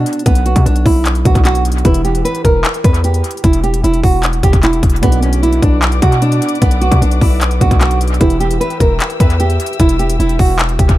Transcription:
Already playing: felt piano B2 B3 D4 F#4, nylon-string guitar D4
0.06 closed hi-hat
0.13 closed hi-hat
0.19 closed hi-hat
0.26 808-style bass B1, nylon-string guitar B3, kick, closed hi-hat
0.35 closed hi-hat
0.46 nylon-string guitar F#4, closed hi-hat
0.56 808-style bass B2, kick, closed hi-hat
0.66 808-style bass B1, nylon-string guitar D4, closed hi-hat
0.76 closed hi-hat
0.86 808-style bass B1, nylon-string guitar E4, kick, open hi-hat
1.05 clap, closed hi-hat
1.15 closed hi-hat
1.24 808-style bass B1, felt piano B2 B3 D4 F#4, nylon-string guitar F#4, kick, closed hi-hat
1.35 808-style bass B1, kick, closed hi-hat
1.45 nylon-string guitar F#4, clap, closed hi-hat
1.55 closed hi-hat
1.65 closed hi-hat
1.72 closed hi-hat
1.78 closed hi-hat
1.84 808-style bass E1, felt piano E3 E4 G4 B4, nylon-string guitar E4, kick, closed hi-hat
1.94 closed hi-hat
2.05 nylon-string guitar G4, closed hi-hat
2.15 closed hi-hat
2.25 nylon-string guitar B4, closed hi-hat
2.35 closed hi-hat
2.45 808-style bass E1, nylon-string guitar A#4, kick, closed hi-hat
2.64 clap, closed hi-hat
2.74 closed hi-hat
2.84 808-style bass E2, nylon-string guitar B4, kick, closed hi-hat
2.94 closed hi-hat
3.04 nylon-string guitar G4, closed hi-hat
3.14 closed hi-hat
3.24 closed hi-hat
3.31 closed hi-hat
3.37 closed hi-hat
3.44 808-style bass E1, nylon-string guitar E4, kick, closed hi-hat
3.53 closed hi-hat
3.64 nylon-string guitar G4, closed hi-hat
3.74 closed hi-hat
3.84 808-style bass E1, nylon-string guitar E4, closed hi-hat
3.94 closed hi-hat
4.03 808-style bass E1, nylon-string guitar F#4, kick, open hi-hat
4.23 clap, closed hi-hat
4.33 closed hi-hat
4.43 808-style bass E1, nylon-string guitar G4, kick, closed hi-hat
4.53 808-style bass E1, kick, closed hi-hat
4.63 nylon-string guitar E4, clap, closed hi-hat
4.73 closed hi-hat
4.83 808-style bass E1, kick, closed hi-hat
4.90 closed hi-hat
4.96 closed hi-hat
5.01 808-style bass B1, felt piano B2 B3 D4 F#4, nylon-string guitar B3, string section B4 D5 F#5 D6, kick, closed hi-hat
5.12 closed hi-hat
5.22 nylon-string guitar C#4, closed hi-hat
5.33 closed hi-hat
5.43 nylon-string guitar E4, closed hi-hat
5.53 closed hi-hat
5.62 808-style bass B1, nylon-string guitar D4, kick, closed hi-hat
5.82 clap, closed hi-hat
5.92 closed hi-hat
6.02 808-style bass B2, nylon-string guitar F#4, kick, closed hi-hat
6.12 closed hi-hat
6.22 nylon-string guitar D4, closed hi-hat
6.32 closed hi-hat
6.42 closed hi-hat
6.49 closed hi-hat
6.55 closed hi-hat
6.62 808-style bass B1, nylon-string guitar B3, kick, closed hi-hat
6.71 closed hi-hat
6.81 nylon-string guitar F#4, closed hi-hat
6.92 808-style bass B2, kick, closed hi-hat
7.02 808-style bass B1, nylon-string guitar D4, closed hi-hat
7.11 closed hi-hat
7.21 808-style bass B1, nylon-string guitar E4, kick, open hi-hat
7.41 clap, closed hi-hat
7.51 closed hi-hat
7.60 808-style bass B1, felt piano B2 B3 D4 F#4, nylon-string guitar F#4, kick, closed hi-hat
7.71 808-style bass B1, kick, closed hi-hat
7.81 nylon-string guitar F#4, clap, closed hi-hat
7.91 closed hi-hat
8.01 closed hi-hat
8.08 closed hi-hat
8.14 closed hi-hat
8.20 808-style bass E1, felt piano E3 E4 G4 B4, nylon-string guitar E4, string section E5 G5 E6, kick, closed hi-hat
8.30 closed hi-hat
8.40 nylon-string guitar G4, closed hi-hat
8.51 closed hi-hat
8.61 nylon-string guitar B4, closed hi-hat
8.70 closed hi-hat
8.80 808-style bass E1, nylon-string guitar A#4, kick, closed hi-hat
9.00 clap, closed hi-hat
9.10 closed hi-hat
9.20 808-style bass E2, nylon-string guitar B4, kick, closed hi-hat
9.30 closed hi-hat
9.40 nylon-string guitar G4, closed hi-hat
9.50 closed hi-hat
9.60 closed hi-hat
9.66 closed hi-hat
9.73 closed hi-hat
9.80 808-style bass E1, nylon-string guitar E4, kick, closed hi-hat
9.89 closed hi-hat
9.99 nylon-string guitar G4, closed hi-hat
10.10 closed hi-hat
10.19 808-style bass E1, nylon-string guitar E4, closed hi-hat
10.29 closed hi-hat
10.39 808-style bass E1, nylon-string guitar F#4, kick, open hi-hat
10.59 clap, closed hi-hat
10.69 closed hi-hat
10.79 808-style bass E1, nylon-string guitar G4, kick, closed hi-hat
10.89 808-style bass E1, kick, closed hi-hat

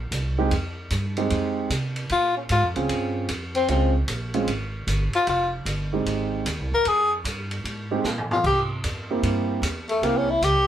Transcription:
Already playing: upright bass A#1
0.11 upright bass C2, hi-hat pedal, ride
0.38 grand piano G#3 C4 D#4 G4
0.51 upright bass F2, ride
0.90 upright bass G2, hi-hat pedal, ride
1.17 grand piano G#3 C4 D#4 G4, ride
1.30 upright bass F2, ride
1.70 upright bass C3, hi-hat pedal, ride
1.96 ride
2.09 upright bass A#2, tenor saxophone F4, ride
2.37 tenor saxophone C#4
2.49 upright bass G#2, tenor saxophone F4, hi-hat pedal, ride
2.63 upright bass F2
2.76 upright bass C#2, grand piano C4 C#4 F4 G#4, ride
2.89 upright bass G2, ride
3.29 upright bass F2, hi-hat pedal, ride
3.55 tenor saxophone C4, ride
3.68 upright bass C#2, grand piano G#3 C4 C#4 F4, tenor saxophone C4, ride
4.08 upright bass A#1, hi-hat pedal, ride
4.34 grand piano G#3 C4 C#4 F4, ride
4.47 upright bass G#1, ride
4.87 upright bass G1, hi-hat pedal, ride
5.13 tenor saxophone F4, muted upright bass stroke, ride
5.27 upright bass F1, tenor saxophone F4, ride
5.65 upright bass G1, hi-hat pedal, ride
5.93 grand piano G#3 C4 D#4 G4
6.06 upright bass G#1, ride
6.45 upright bass D#2, hi-hat pedal, ride
6.59 upright bass C2
6.72 upright bass G#1, tenor saxophone A#4
6.85 upright bass F2, tenor saxophone G#4, ride
7.24 upright bass G2, hi-hat pedal, ride
7.51 ride
7.64 upright bass G#2, ride
7.91 grand piano G#3 C4 D#4 G4
8.04 upright bass A#2, snare, hi-hat pedal
8.18 floor tom
8.31 tenor saxophone F4, floor tom
8.44 upright bass C3, tenor saxophone G4, kick, crash
8.84 upright bass F2, hi-hat pedal, ride
9.11 grand piano A#3 C4 E4 G4
9.23 upright bass G2, ride
9.62 upright bass E2, hi-hat pedal, ride
9.89 tenor saxophone A3, ride
10.02 upright bass C2, grand piano A#3 C4 E4 G4, tenor saxophone A#3, ride
10.17 tenor saxophone C#4
10.30 tenor saxophone E4
10.41 upright bass C#2, tenor saxophone G4, hi-hat pedal, ride
10.55 upright bass C2

